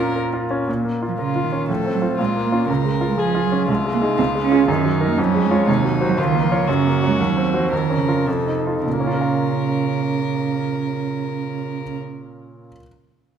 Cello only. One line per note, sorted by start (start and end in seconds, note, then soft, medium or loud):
0.00 0.42 C#4 medium
0.67 1.03 A#2 medium
1.08 1.12 F3 soft
1.19 1.45 C#3 medium
1.44 1.70 D#3 medium
1.69 1.93 F3 medium
1.94 2.02 F#3 medium
2.19 2.43 G#3 medium
2.44 2.68 A#3 medium
2.68 3.05 C#3 medium
3.08 3.18 G#3 medium
3.19 3.45 F3 medium
3.44 3.67 F#3 medium
3.68 3.76 G#3 medium
3.93 4.01 A#3 medium
4.18 4.26 C4 medium
4.43 4.67 C#4 medium
4.68 5.09 D#3 medium
5.07 5.21 A#3 medium
5.19 5.46 F#3 medium
5.44 5.70 G#3 medium
5.68 6.05 C3 medium
6.07 6.12 F#3 medium
6.19 6.45 D#3 medium
6.43 6.69 F3 medium
6.68 7.08 C#3 medium
7.07 7.20 G#3 medium
7.19 7.58 F#3 medium
7.58 7.70 F3 medium
7.70 7.98 D#3 medium
7.97 8.27 C#3 medium
8.25 8.84 C3 medium
8.85 11.97 C#3 medium